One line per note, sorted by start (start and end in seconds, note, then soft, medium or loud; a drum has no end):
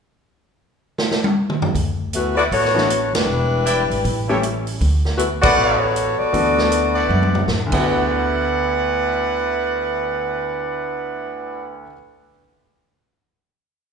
0.98 snare medium
1.11 snare medium
1.24 high tom medium
1.50 mid tom medium
1.62 floor tom medium
1.75 2.47 D2 medium
1.75 kick soft
1.75 open hi-hat soft
2.13 2.36 E3 medium
2.13 2.36 A3 medium
2.13 2.36 B3 medium
2.13 2.37 F#4 medium
2.13 closed hi-hat medium
2.36 2.44 B3 medium
2.36 2.46 E4 medium
2.36 2.44 F#4 medium
2.36 2.43 A4 medium
2.36 2.46 B4 medium
2.36 2.46 D5 medium
2.36 2.44 D5 medium
2.36 2.46 F#5 medium
2.51 3.10 A1 medium
2.51 3.10 B3 medium
2.51 3.11 F#4 medium
2.51 3.10 A4 medium
2.51 3.11 C#5 loud
2.51 kick soft
2.51 open hi-hat soft
2.65 snare soft
2.74 2.87 E3 medium
2.74 2.88 A3 soft
2.74 2.88 B3 medium
2.74 2.88 D4 medium
2.74 2.88 F#4 medium
2.74 snare soft
2.90 closed hi-hat medium
3.13 3.26 F1 medium
3.13 4.64 G3 medium
3.13 4.01 D4 medium
3.13 4.64 E4 medium
3.13 4.63 B4 medium
3.13 snare medium
3.13 ride medium
3.26 3.86 E1 medium
3.65 3.82 E4 medium
3.65 3.82 B4 medium
3.65 3.82 D5 medium
3.65 3.82 G5 medium
3.65 closed hi-hat medium
3.90 4.03 G#1 medium
3.90 open hi-hat soft
4.05 4.77 A1 medium
4.05 kick soft
4.05 open hi-hat soft
4.28 4.41 E3 medium
4.28 4.41 G3 medium
4.28 4.41 A3 medium
4.28 4.41 C#4 medium
4.28 4.38 E4 medium
4.28 4.41 G4 medium
4.28 4.38 A4 medium
4.28 4.38 C#5 medium
4.28 4.38 G5 medium
4.43 closed hi-hat soft
4.67 open hi-hat soft
4.81 5.53 D2 medium
4.81 kick soft
4.81 open hi-hat soft
5.05 snare soft
5.17 5.29 E3 medium
5.17 5.29 A3 medium
5.17 5.28 B3 medium
5.17 5.29 F#4 medium
5.17 closed hi-hat medium
5.42 5.78 B3 medium
5.42 5.93 E4 loud
5.42 5.78 F#4 medium
5.42 5.78 A4 medium
5.42 5.93 B4 medium
5.42 5.78 D5 loud
5.42 5.92 D5 medium
5.42 5.93 F#5 loud
5.42 kick medium
5.42 ride medium
5.57 6.15 A1 medium
5.79 6.17 B3 medium
5.79 6.17 F#4 medium
5.79 6.17 A4 medium
5.79 6.18 C#5 medium
5.96 closed hi-hat soft
6.18 7.47 B3 medium
6.18 7.47 F#4 medium
6.18 7.47 A4 medium
6.18 7.47 D5 loud
6.18 muted upright bass stroke soft
6.33 7.06 D2 medium
6.33 7.39 E3 medium
6.33 7.39 A3 soft
6.33 7.39 B3 soft
6.33 7.39 D4 soft
6.33 7.39 F#4 medium
6.33 kick soft
6.33 open hi-hat soft
6.58 snare medium
6.72 closed hi-hat medium
6.95 7.44 E4 medium
6.95 7.44 B4 medium
6.95 7.44 D5 medium
6.95 7.44 F#5 loud
7.09 7.45 F#2 medium
7.09 high tom soft
7.23 high tom medium
7.35 floor tom medium
7.48 7.70 A2 medium
7.48 snare medium
7.66 11.83 D2 medium
7.66 11.86 D3 medium
7.71 11.85 D2 medium
7.71 11.89 B3 medium
7.71 11.69 E4 medium
7.71 11.69 B4 medium
7.71 11.69 D5 medium
7.71 11.69 F#5 loud
7.71 kick medium
7.71 crash medium
7.75 11.91 E4 medium
7.75 11.95 F#4 medium